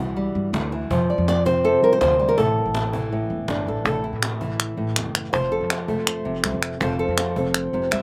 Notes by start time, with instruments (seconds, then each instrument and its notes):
Already playing: upright bass C2, nylon-string guitar E3 E4 F#4
0.17 nylon-string guitar G3
0.35 upright bass G2, cajon slap
0.53 upright bass D2, nylon-string guitar D3, cajon slap
0.72 nylon-string guitar E3
0.90 upright bass F2, nylon-string guitar F3, cajon bass
1.09 nylon-string guitar D5, cajon slap
1.18 upright bass F2
1.28 nylon-string guitar D5, cajon slap
1.45 nylon-string guitar C4 C5, cajon bass
1.64 nylon-string guitar C3 A4, cajon slap
1.83 upright bass C2, nylon-string guitar A#4
1.93 nylon-string guitar C5
2.01 upright bass D2, nylon-string guitar F3 C5, cajon slap
2.20 nylon-string guitar G3
2.29 nylon-string guitar A#4
2.38 upright bass A1, nylon-string guitar A2 A4, cajon bass
2.57 cajon slap
2.66 upright bass A1
2.75 cajon slap
2.93 nylon-string guitar E3, cajon bass
3.12 nylon-string guitar A2, cajon slap
3.30 upright bass E1, cajon slap
3.48 upright bass G1, nylon-string guitar D4, cajon slap
3.67 upright bass A1, nylon-string guitar A4
3.85 upright bass A1, nylon-string guitar A2 E3 A3 D4 A4, cajon bass
4.04 nylon-string guitar E4, cajon slap
4.13 upright bass A2
4.22 cajon slap, clap
4.41 upright bass A1, nylon-string guitar E3, cajon bass
4.60 cajon slap, clap
4.77 upright bass A1, nylon-string guitar A2
4.96 upright bass E2, cajon slap, clap
5.06 upright bass F#1
5.15 clap
5.33 upright bass F1, nylon-string guitar F3 C5, cajon bass
5.52 nylon-string guitar A4, cajon slap
5.61 upright bass F2
5.70 cajon slap, clap
5.88 upright bass F1, nylon-string guitar A3 C5, cajon bass
6.07 nylon-string guitar C5, clap
6.25 upright bass F1, nylon-string guitar C3
6.44 upright bass C2, cajon bass, cajon slap, clap
6.54 upright bass F1
6.63 clap
6.80 upright bass F1, nylon-string guitar F3 C4 F4 A4 C5, cajon bass
6.99 nylon-string guitar A4, cajon slap
7.08 upright bass F2
7.18 nylon-string guitar F4, cajon slap, clap
7.36 upright bass F1, nylon-string guitar C4 A4, cajon bass
7.54 cajon slap, clap
7.73 upright bass F1, nylon-string guitar C3
7.91 upright bass C2, nylon-string guitar G3 E5, cajon slap, clap